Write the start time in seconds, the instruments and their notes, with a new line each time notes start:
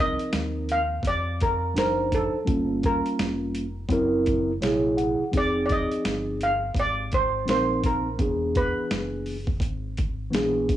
Already playing: fingered electric bass C2, tine electric piano F3 C4 D#4 A#4
0.00 steel pan D#5
0.19 closed hi-hat
0.33 fingered electric bass D#2, snare, closed hi-hat
0.69 steel pan F5, closed hi-hat
1.03 fingered electric bass F2, kick, closed hi-hat
1.08 steel pan D5
1.40 steel pan A#4, kick, closed hi-hat
1.74 fingered electric bass F#1, tine electric piano F3 D4 D#4 C5, snare, closed hi-hat
1.78 steel pan A#4
2.12 steel pan A4, kick, closed hi-hat
2.34 muted fingered electric bass stroke
2.45 fingered electric bass G1, tine electric piano G3 A#3 C#4 F4, kick, closed hi-hat
2.83 steel pan A#4, kick, closed hi-hat
3.06 closed hi-hat
3.19 fingered electric bass F1, snare, closed hi-hat
3.55 closed hi-hat
3.88 fingered electric bass F#1, tine electric piano F#3 C4 E4 A#4, kick, closed hi-hat
4.26 kick, closed hi-hat
4.61 fingered electric bass A#1, tine electric piano C3 F#3 E4 G#4 C#5, snare, closed hi-hat
4.97 tine electric piano F#5, closed hi-hat
5.19 muted fingered electric bass stroke
5.32 fingered electric bass F1, tine electric piano F3 C4 D#4 G#4, kick, closed hi-hat
5.37 steel pan D5
5.66 steel pan D5, closed hi-hat
5.70 steel pan D#5, kick
5.91 muted fingered electric bass stroke, closed hi-hat
6.05 fingered electric bass G1, snare, closed hi-hat
6.41 steel pan F5, closed hi-hat
6.74 fingered electric bass G#1, kick, closed hi-hat
6.80 steel pan D5
7.12 steel pan C5, kick, closed hi-hat
7.45 fingered electric bass A#1, tine electric piano F3 C4 D#4 A#4, snare, closed hi-hat
7.50 steel pan C5
7.84 steel pan A#4, kick, closed hi-hat
8.17 fingered electric bass E1, tine electric piano E3 B3 D4 G#4, kick, closed hi-hat
8.55 steel pan B4, kick, closed hi-hat
8.91 fingered electric bass F#1, snare, closed hi-hat
9.26 open hi-hat
9.47 kick
9.60 fingered electric bass G#1, kick, closed hi-hat
9.97 kick, closed hi-hat
10.31 fingered electric bass A#1, tine electric piano E3 B3 D4 G#4, snare, closed hi-hat
10.69 kick, closed hi-hat